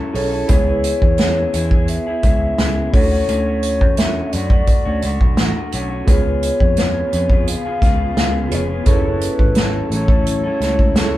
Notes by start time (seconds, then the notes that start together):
Already playing: F#3 C#4 E4 G#4 A4 C#5
0.13 B1 F#3 C#4 E4 G#4 A4 C#5, open hi-hat
0.31 C#4 E4 A4
0.46 C#2 C#3 B3 E4 G#4 B4 C#5, kick, closed hi-hat
0.52 C#5
0.65 B3 E4 G#4
0.84 closed hi-hat
1.02 E2, kick
1.18 C#3 B3 E4 G#4, snare, closed hi-hat
1.53 E2 C#3 B3 E4 G#4, closed hi-hat
1.71 B3 E4 G#4, kick
1.88 E5, closed hi-hat
2.07 B3 E4 G#4
2.23 C#2 C#3 B3 E4 G#4, kick, closed hi-hat
2.58 C#2 C#3 B3 E4 G#4, snare, closed hi-hat
2.91 D2 D3 A3 E4 F#4 A4 C#5, kick, open hi-hat
2.95 C#4 F#4
3.12 A3 C#4 F#4
3.28 D2 D3 A3 C#4 F#4, closed hi-hat
3.46 A3 C#4 F#4
3.63 closed hi-hat
3.81 E2, kick
3.97 D3 A3 C#4 F#4 E5, snare, closed hi-hat
4.27 E5
4.32 F#2 D3 A3 C#4 F#4 D5, closed hi-hat
4.50 A3 F#4, kick
4.67 kick, closed hi-hat
4.85 D2 A3 C#4 F#4
5.02 C#2 D3 A3 F#4, closed hi-hat
5.21 B1, kick
5.37 A1 D3 A3 F#4, snare, closed hi-hat
5.72 B1 D3 A3 C#4 F#4, closed hi-hat
5.90 A3 C#4 F#4
6.05 C#2 C#3 B3 F4 G#4 B4, kick, closed hi-hat
6.09 F4 G#4 C#5
6.25 B3 F4 G#4
6.43 closed hi-hat
6.60 F2, kick
6.77 C#3 B3 F4 G#4, snare, closed hi-hat
7.12 F2 C#3 B3 F4 G#4, closed hi-hat
7.30 B3 F4 G#4, kick
7.48 F5, closed hi-hat
7.65 B3 F4 G#4
7.82 C#2 C#3 B3 F4 G#4, kick, snare, closed hi-hat
8.17 C#2 C#3 B3 F4 G#4, snare, closed hi-hat
8.49 F1 C#3 B3 F4 G#4 B4 C#5, closed hi-hat
8.54 F4 G#4 C#5
8.70 B3 F4 G#4
8.84 F#1 F#3 C#4 E4 G#4 A4, kick, closed hi-hat
8.88 A3 E4 A4 B4 C#5
9.05 C#4 E4 A4
9.21 closed hi-hat
9.39 G#1, kick
9.55 F#3 C#4 E4, snare, closed hi-hat
9.59 A4
9.90 A1 F#3 C#4 C#5, closed hi-hat
9.94 E4 A4
10.08 C#4 E4 A4, kick
10.27 C#5, closed hi-hat
10.44 C#4 E4 A4
10.60 C#2 F#3 C#4 E4 A4, snare, closed hi-hat
10.79 kick
10.94 F#3 C#4 E4 G#4 A4 C#5, snare, closed hi-hat